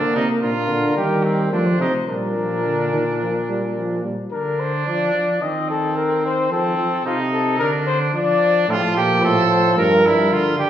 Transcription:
Already playing: trombone A#3, trumpet D4 A#4
0.15 euphonium C3, trumpet D#4
0.41 euphonium A#2, trombone D4, trumpet F4 A#4
0.69 euphonium D3
0.97 euphonium D#3, trombone G3, trumpet G4
1.24 trumpet C4
1.52 euphonium F3, trombone A3, trumpet D4 C5
1.58 trumpet D5
1.66 trumpet C5
1.79 euphonium C3, trumpet D#4
2.07 euphonium A#2, trombone G3, trumpet D4 A#4
2.36 trombone F3
2.65 trombone D3
2.93 trombone D#3
3.21 trombone F3
3.49 trombone G3
3.77 trombone F3
4.04 trombone G3
4.32 trombone D3, trumpet D4 A#4
4.60 trumpet C5
4.87 trombone F3, trumpet D5
5.15 trombone F3
5.42 trombone D#3, trumpet C4 D#5
5.70 trumpet A4
5.97 trumpet A#4
6.25 trumpet C5
6.51 trombone F3, trumpet C4 A4
6.77 trombone F3
7.05 trombone C3, trumpet D#4 F4
7.33 trumpet A4
7.59 trombone D3, trumpet D4 A#4
7.86 trumpet C5
8.14 trombone F3, trumpet D4 D5
8.68 euphonium A2, trombone F3, trumpet F4 A4
8.75 trumpet G4
8.82 trumpet A4
8.96 euphonium A#2, trumpet G4
9.22 euphonium A2, trumpet A4 C5
9.49 trumpet C5
9.77 euphonium G2, trumpet A#4
10.05 euphonium G2, trumpet E4
10.31 euphonium D3, trumpet F4
10.58 euphonium D3, trumpet G4

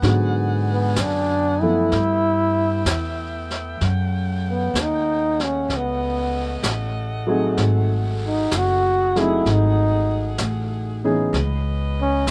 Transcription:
Already playing: saxophone section B3 F#5
0.02 upright bass G#2, grand piano D3 F#3 G#3 B3 F#4, saxophone section D5 G#5, brush sweep, snare
0.73 trombone B3
0.96 upright bass F#2, snare, hi-hat pedal
1.02 trombone D4
1.61 grand piano F3 A3 B3 E4 A4, trombone E4
1.90 upright bass G2, saxophone section A3 E5 G5, brush sweep, snare
2.85 upright bass E2, snare, hi-hat pedal
3.50 snare
3.81 upright bass F#2, saxophone section C#3 F#5, brush sweep, snare
4.50 trombone B3
4.74 upright bass D#2, snare, hi-hat pedal
4.81 trombone D#4
5.40 trombone C#4, snare
5.68 upright bass C#2, saxophone section D#5, brush sweep, snare
5.77 trombone B3
6.62 upright bass A1, snare, hi-hat pedal
7.27 grand piano F#3 A3 C4 D#4 G#4
7.57 upright bass G#1, saxophone section G#4, brush sweep, snare
8.27 trombone D#4
8.51 upright bass F#1, snare, hi-hat pedal
8.57 trombone F#4
9.16 grand piano F#3 A3 C4 D#4 G#4, snare
9.20 trombone E4
9.45 upright bass G#1, brush sweep, snare
9.53 trombone D#4
10.38 upright bass A1, snare, hi-hat pedal
11.04 grand piano E3 B3 C#4 D#4 G#4
11.33 upright bass C#2, saxophone section B3 C#4 B4 D#5, brush sweep, snare
12.01 trombone C#4
12.27 upright bass D#2, snare, hi-hat pedal

